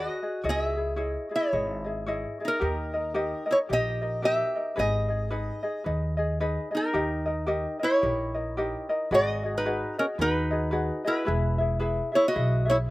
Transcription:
Already playing: F#4 G#4 B4 D#5
0.22 F#4 G#4 D#5
0.43 C#2 E4 G#4 C#5 D#5
0.49 G#4 D#5
0.61 E5
0.75 E4 G#4 D#5
0.96 E4 G#4 C#5 D#5
1.29 E4 G#4 D#5
1.36 E4 C#5
1.53 G#1 E4 G#4 C#5 D#5
1.84 E4 G#4 D#5
2.06 E4 G#4 C#5 D#5
2.40 E4 G#4 D#5
2.45 D#4 A#4
2.60 D#2 D#4 G4 A#4 D#5
2.94 D#4 A#4 D#5
3.14 D#4 G4 A#4 D#5
3.46 D#4 A#4 D#5
3.51 E4 C#5
3.69 A#1 D#4 G4 A#4 D#5
3.73 D#5
4.02 D#4 A#4 D#5
4.22 D#4 G4 A#4 D#5 E5
4.55 D#4 A#4 D#5
4.76 G#1 D#4 G#4 B4 D#5
5.09 D#4 G#4 D#5
5.30 D#4 G#4 B4 D#5
5.63 D#4 G#4 D#5
5.84 D#2 D#4 G#4 B4 D#5
6.17 D#4 G#4 D#5
6.40 D#4 G#4 B4 D#5
6.71 D#4 G#4 D#5
6.77 A#4
6.93 D#2 D#4 G4 A#4 D#5
7.26 D#4 A#4 D#5
7.46 D#4 G4 A#4 D#5
7.79 D#4 E4 A#4 D#5
7.84 C#5
8.02 A#1 D#4 G4 A#4 D#5
8.34 D#4 A#4 D#5
8.57 D#4 G4 A#4 D#5
8.89 D#4 A#4 D#5
9.11 G#1 F#4 G#4 B4 D#5
9.43 F#4 G#4 D#5
9.57 D#4 B4
9.65 F#4 G#4 B4 D#5
9.98 C#4 F#4 G#4 A#4 D#5
10.18 D#2 D#4 F#4 G#4 B4 D#5
10.51 F#4 G#4 D#5
10.71 F#4 G#4 B4 D#5
11.05 E4 F#4 G#4 B4 D#5
11.25 E1 E4 G#4 B4 E5
11.58 E4 G#4 E5
11.79 E4 G#4 B4 E5
12.12 E4 G#4 C#5 E5
12.16 E4
12.28 F#4 D#5
12.33 B1 E4 G#4 B4 E5
12.65 E4 G#4 E5
12.70 E4 C#5

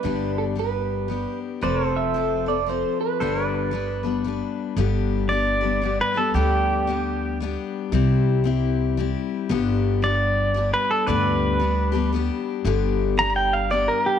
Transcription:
Already playing: B4 D5
0.03 G1 G2 D3 G3 B3 D4 G4
0.38 A4
0.55 G3 B3 D4 G4 B4
1.08 G3 B3 D4 G4
1.61 F1 F3 C4 F4 A4 B4 C5 D5
1.88 A4 C5
1.97 E5
2.14 F3 C4 F4 A4
2.46 C4 F4 A4 D5
2.66 F3 C4 F4 A4 C5
3.01 B4
3.20 G1 G2 D3 G3 B3 D4 A4 B4 C5
3.45 B4 D5
3.71 G3 B3 D4 B4
4.03 G3 B3 D4 B4
4.24 G3 B3 D4 B4
4.77 G1 G2 D3 G3 B3 D4 G4
5.29 G3 B3 D4 G4 D5
5.61 G3 B3 D4 G4
5.82 G3 B3 D4 G4
6.01 B4
6.14 G3 B3 D4 G4 A4
6.34 D2 G2 D3 G3 B3 D4 G4
6.87 G3 B3 D4 G4
7.40 G3 B3 D4 G4
7.92 C2 C3 G3 C4 E4 G4
8.44 G3 C4 E4 G4
8.97 G3 C4 E4 G4
9.49 G1 G2 D3 G3 B3 D4 G4
10.02 G3 B3 D4 G4 D5
10.54 G3 B3 D4 G4
10.74 B4
10.91 A4
11.07 D2 G2 D3 G3 B3 D4 G4 B4 D5
11.60 G3 B3 D4 G4
11.92 G3 B3 D4 G4
12.13 G3 B3 D4 G4
12.65 G1 G2 D3 G3 B3 D4 G4
13.18 B3 D4 G4 A#5
13.36 G5
13.53 F5
13.70 G3 B3 D4 G4 D5
13.88 A#4
14.06 G4

